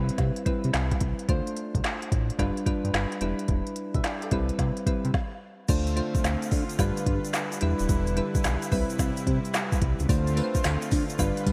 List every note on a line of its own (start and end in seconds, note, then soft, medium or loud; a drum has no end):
0.00 0.11 C2 loud
0.00 0.39 G3 medium
0.00 0.39 C4 medium
0.00 0.39 E4 medium
0.00 0.39 B4 loud
0.09 closed hi-hat medium
0.18 0.31 C3 loud
0.18 kick medium
0.18 snare medium
0.18 closed hi-hat medium
0.36 closed hi-hat medium
0.46 0.54 C3 medium
0.46 1.16 G3 medium
0.46 1.16 C4 medium
0.46 1.17 E4 medium
0.46 1.17 B4 medium
0.46 kick medium
0.46 closed hi-hat medium
0.64 0.71 C3 loud
0.64 closed hi-hat soft
0.74 0.93 C2 loud
0.74 snare loud
0.74 clap medium
0.74 closed hi-hat medium
0.91 kick medium
0.91 closed hi-hat medium
1.00 1.14 C2 medium
1.00 kick medium
1.00 closed hi-hat loud
1.19 closed hi-hat soft
1.28 1.42 D2 loud
1.28 2.20 A3 medium
1.28 2.20 D4 medium
1.28 2.20 F4 medium
1.28 2.20 C5 loud
1.28 kick loud
1.28 closed hi-hat medium
1.47 closed hi-hat medium
1.57 closed hi-hat medium
1.75 1.81 C2 loud
1.75 kick medium
1.75 closed hi-hat soft
1.84 snare medium
1.84 clap medium
1.84 closed hi-hat medium
2.02 closed hi-hat medium
2.12 2.31 A1 medium
2.12 kick loud
2.12 closed hi-hat medium
2.30 closed hi-hat medium
2.39 2.52 G1 loud
2.39 2.63 G3 medium
2.39 2.63 D4 medium
2.39 2.63 F4 medium
2.39 2.63 B4 loud
2.39 kick medium
2.39 snare medium
2.39 closed hi-hat medium
2.57 closed hi-hat medium
2.66 2.74 G2 soft
2.66 3.20 G3 medium
2.66 3.20 D4 medium
2.66 3.21 F4 medium
2.66 3.21 B4 medium
2.66 kick medium
2.66 closed hi-hat medium
2.84 2.91 G2 medium
2.84 closed hi-hat soft
2.94 3.06 G1 medium
2.94 snare loud
2.94 clap medium
2.94 closed hi-hat medium
3.12 closed hi-hat medium
3.21 3.34 E1 medium
3.21 4.12 G3 medium
3.21 4.12 D4 medium
3.21 4.13 E4 medium
3.21 3.77 B4 medium
3.21 closed hi-hat medium
3.39 closed hi-hat medium
3.48 3.62 E1 loud
3.48 kick loud
3.48 closed hi-hat medium
3.67 closed hi-hat soft
3.76 closed hi-hat medium
3.94 4.01 B1 loud
3.94 4.04 B4 medium
3.94 4.04 E5 medium
3.94 kick medium
3.94 closed hi-hat soft
4.04 4.22 D5 medium
4.04 4.22 G5 medium
4.04 snare medium
4.04 clap medium
4.04 closed hi-hat medium
4.22 4.49 A4 medium
4.22 4.49 D5 medium
4.22 closed hi-hat soft
4.31 4.51 C2 loud
4.31 4.79 G3 medium
4.31 4.79 C4 medium
4.31 4.80 E4 medium
4.31 4.80 B4 loud
4.31 kick loud
4.31 closed hi-hat medium
4.49 closed hi-hat medium
4.59 4.72 C3 loud
4.59 kick medium
4.59 snare medium
4.59 closed hi-hat medium
4.77 closed hi-hat medium
4.87 4.94 C3 soft
4.87 5.14 G3 medium
4.87 5.14 C4 medium
4.87 5.14 E4 medium
4.87 5.14 B4 medium
4.87 kick loud
4.87 closed hi-hat medium
5.05 5.11 C3 loud
5.05 closed hi-hat soft
5.14 kick loud
5.14 snare medium
5.68 6.01 D2 loud
5.68 7.60 D3 medium
5.68 5.93 A3 medium
5.68 6.78 A3 medium
5.68 6.78 C4 medium
5.68 5.93 D4 medium
5.68 5.93 F4 medium
5.68 7.60 F4 medium
5.68 5.93 C5 medium
5.68 kick loud
5.68 closed hi-hat medium
5.68 crash loud
5.68 shaker medium
5.87 closed hi-hat medium
5.87 shaker soft
5.96 6.79 A3 medium
5.96 6.78 D4 medium
5.96 6.78 F4 medium
5.96 6.79 C5 loud
5.96 closed hi-hat medium
6.15 kick medium
6.15 closed hi-hat soft
6.15 shaker soft
6.24 6.37 D2 medium
6.24 snare medium
6.24 clap medium
6.24 closed hi-hat medium
6.24 shaker medium
6.42 closed hi-hat medium
6.42 shaker medium
6.51 6.65 D3 loud
6.51 kick loud
6.51 open hi-hat medium
6.51 shaker soft
6.69 closed hi-hat medium
6.69 shaker medium
6.79 6.92 G1 loud
6.79 7.49 G3 loud
6.79 10.06 G3 medium
6.79 7.50 D4 medium
6.79 7.50 F4 medium
6.79 10.06 B4 medium
6.79 7.50 B4 loud
6.79 kick medium
6.79 snare medium
6.79 closed hi-hat medium
6.79 shaker medium
6.97 closed hi-hat medium
6.97 shaker soft
7.06 7.19 G2 loud
7.06 kick loud
7.06 closed hi-hat medium
7.25 closed hi-hat medium
7.25 shaker soft
7.34 snare loud
7.34 clap medium
7.34 closed hi-hat medium
7.34 shaker medium
7.52 closed hi-hat medium
7.52 shaker medium
7.61 7.75 E1 loud
7.61 8.71 D3 medium
7.61 8.09 G3 medium
7.61 8.09 D4 medium
7.61 8.10 E4 medium
7.61 10.07 E4 medium
7.61 8.10 B4 loud
7.61 closed hi-hat loud
7.79 7.87 D#1 medium
7.79 closed hi-hat medium
7.79 shaker medium
7.89 8.22 E1 loud
7.89 kick loud
7.89 closed hi-hat medium
7.89 shaker medium
8.07 closed hi-hat medium
8.07 shaker soft
8.17 8.70 G3 medium
8.17 8.72 D4 medium
8.17 8.71 E4 medium
8.17 8.71 B4 loud
8.17 closed hi-hat medium
8.35 kick loud
8.35 closed hi-hat soft
8.35 shaker medium
8.44 8.57 B1 medium
8.44 snare loud
8.44 clap medium
8.44 closed hi-hat medium
8.44 shaker medium
8.62 closed hi-hat medium
8.62 shaker medium
8.71 8.85 C2 loud
8.71 10.08 C3 medium
8.71 9.63 G3 medium
8.71 9.63 C4 medium
8.71 9.63 E4 medium
8.71 9.63 B4 loud
8.71 kick loud
8.71 open hi-hat medium
8.71 shaker soft
8.90 closed hi-hat medium
8.90 shaker medium
8.99 9.12 C2 loud
8.99 kick medium
8.99 snare medium
8.99 closed hi-hat medium
8.99 shaker medium
9.17 closed hi-hat medium
9.17 shaker soft
9.27 9.40 C3 loud
9.27 kick medium
9.27 closed hi-hat medium
9.45 closed hi-hat soft
9.45 shaker soft
9.54 snare loud
9.54 clap medium
9.54 closed hi-hat medium
9.54 shaker medium
9.72 kick loud
9.72 closed hi-hat medium
9.72 shaker medium
9.82 9.95 C2 medium
9.82 kick loud
9.82 closed hi-hat loud
9.99 10.07 C#2 medium
9.99 closed hi-hat medium
9.99 shaker soft
10.09 10.42 D2 loud
10.09 11.52 D3 medium
10.09 10.33 A3 medium
10.09 11.19 A3 medium
10.09 11.18 C4 medium
10.09 10.33 D4 medium
10.09 10.33 F4 medium
10.09 11.52 F4 medium
10.09 10.33 C5 loud
10.09 kick loud
10.09 closed hi-hat medium
10.09 tambourine medium
10.09 shaker medium
10.27 closed hi-hat medium
10.27 shaker soft
10.36 11.19 A3 medium
10.36 11.18 D4 medium
10.36 11.18 F4 medium
10.36 10.46 B4 medium
10.36 closed hi-hat medium
10.36 tambourine medium
10.44 11.23 C5 loud
10.55 kick loud
10.55 closed hi-hat soft
10.55 shaker soft
10.64 10.78 D2 medium
10.64 snare loud
10.64 clap medium
10.64 closed hi-hat medium
10.64 tambourine loud
10.64 shaker medium
10.82 closed hi-hat medium
10.82 shaker medium
10.91 11.05 D3 loud
10.91 kick loud
10.91 open hi-hat medium
10.91 tambourine medium
10.91 shaker soft
11.09 closed hi-hat medium
11.09 shaker medium
11.19 11.32 G1 loud
11.19 11.52 G3 medium
11.19 11.52 D4 medium
11.19 11.52 F4 medium
11.19 11.52 B4 loud
11.19 11.52 B4 medium
11.19 kick loud
11.19 snare medium
11.19 closed hi-hat medium
11.19 shaker medium
11.37 closed hi-hat medium
11.37 shaker soft
11.46 11.52 G2 loud
11.46 kick medium
11.46 closed hi-hat medium
11.46 tambourine medium